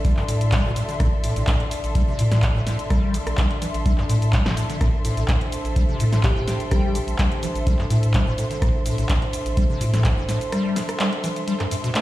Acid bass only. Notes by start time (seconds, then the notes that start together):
0.05 G3
0.17 G2
0.28 A2
0.52 G3
0.65 B2
0.76 A2
0.89 D3
1.00 A2
1.24 A2
1.36 A2
1.48 A2
1.95 G3
2.08 C3
2.19 A2
2.32 A2
2.55 A2
2.67 A2
2.90 G3
3.14 A2
3.38 G3
3.62 E3
3.86 G3
3.98 G2
4.09 A2
4.33 G3
4.46 B2
4.57 A2
4.70 D3
4.81 A2
5.05 A2
5.17 A2
5.28 A2
5.76 G3
5.89 C3
6.00 A2
6.13 A2
6.36 A2
6.48 A2
6.71 G3
6.95 A2
7.19 G3
7.43 E3
7.67 G3
7.79 G2
7.90 A2
8.14 G3
8.27 B2
8.38 A2
8.51 D3
8.62 A2
8.86 A2
8.98 A2
9.09 A2
9.57 G3
9.70 C3
9.81 A2
9.93 A2
10.17 A2
10.28 A2
10.52 G3
10.76 A2
11.00 G3
11.24 E3
11.47 G3
11.60 G2
11.71 G2
11.84 B2
11.95 A3